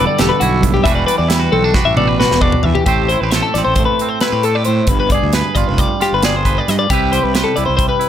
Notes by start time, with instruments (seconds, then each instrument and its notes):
Already playing: clean electric guitar G2 D3 G3 E4 A4 D5
0.07 clean electric guitar D5
0.19 fingered electric bass E1, clean electric guitar G4 A4, snare, closed hi-hat
0.29 clean electric guitar B4
0.40 fingered electric bass B1, clean electric guitar E4 F#4, closed hi-hat
0.61 clean electric guitar G2, kick, closed hi-hat
0.74 fingered electric bass B1, clean electric guitar G4
0.83 fingered electric bass E1, clean electric guitar E3 G3 D4 F#4 B4 E5, kick, closed hi-hat
0.95 clean electric guitar D5
1.07 clean electric guitar B4 D5, closed hi-hat
1.18 fingered electric bass E2, clean electric guitar D5
1.28 clean electric guitar G3 E4 B4, snare, closed hi-hat
1.40 clean electric guitar F#4
1.52 fingered electric bass B1, clean electric guitar C4 A4, high tom
1.64 clean electric guitar D4
1.74 clean electric guitar F#4 B4, kick, snare
1.85 fingered electric bass A1, clean electric guitar E5
1.97 clean electric guitar B2 A4 D5, mid tom
2.08 clean electric guitar B4
2.20 clean electric guitar F#4 B4, snare
2.31 fingered electric bass E1, snare
2.41 clean electric guitar D4 D5, kick
2.52 floor tom
2.63 fingered electric bass E2, clean electric guitar E3 E5, floor tom
2.75 clean electric guitar G4, floor tom
2.86 fingered electric bass A1, clean electric guitar A2 A3 C4 G4 C5, kick, closed hi-hat
3.08 clean electric guitar E4 C5, closed hi-hat
3.21 fingered electric bass A1, clean electric guitar G4 B4
3.31 clean electric guitar C5, snare, closed hi-hat
3.35 clean electric guitar A4
3.43 clean electric guitar A4
3.54 fingered electric bass A1, clean electric guitar C4 D5, snare, closed hi-hat
3.65 fingered electric bass A1, clean electric guitar C5
3.76 clean electric guitar A3 C5, kick, closed hi-hat
3.85 clean electric guitar B4
3.99 clean electric guitar C4, closed hi-hat
4.09 clean electric guitar C5
4.21 clean electric guitar E4 B4, snare, closed hi-hat
4.32 fingered electric bass A2, clean electric guitar G4
4.43 clean electric guitar A4, closed hi-hat
4.55 clean electric guitar B4 D5
4.65 clean electric guitar A2 C5, closed hi-hat
4.87 fingered electric bass G1, clean electric guitar G2 B4, kick, closed hi-hat
5.00 clean electric guitar B4
5.10 clean electric guitar D5, kick, closed hi-hat
5.14 clean electric guitar G#4
5.22 fingered electric bass D2
5.33 clean electric guitar B4, snare, closed hi-hat
5.55 fingered electric bass G1, clean electric guitar F4 D5, kick, closed hi-hat
5.68 fingered electric bass F1, clean electric guitar B4
5.78 clean electric guitar G3 D5, kick, closed hi-hat
6.00 clean electric guitar F4 G4, snare, closed hi-hat
6.13 fingered electric bass G1, clean electric guitar B4
6.22 clean electric guitar G#4 D5, snare, closed hi-hat
6.36 clean electric guitar C5
6.45 clean electric guitar B4, kick, closed hi-hat
6.58 clean electric guitar D5
6.68 fingered electric bass G2, clean electric guitar G2 D#5, snare, closed hi-hat
6.79 clean electric guitar D5
6.90 fingered electric bass C2, clean electric guitar C3 G3 E4 G4 B4, kick, closed hi-hat
7.12 clean electric guitar G4 C5, closed hi-hat
7.23 fingered electric bass C2, clean electric guitar B4
7.34 clean electric guitar B4 C5, snare, closed hi-hat
7.44 clean electric guitar A4
7.56 fingered electric bass C2, clean electric guitar E4 D5, closed hi-hat
7.66 fingered electric bass C2, clean electric guitar C5
7.77 clean electric guitar G3 C5, kick, closed hi-hat
7.89 clean electric guitar B4
7.99 clean electric guitar E4, closed hi-hat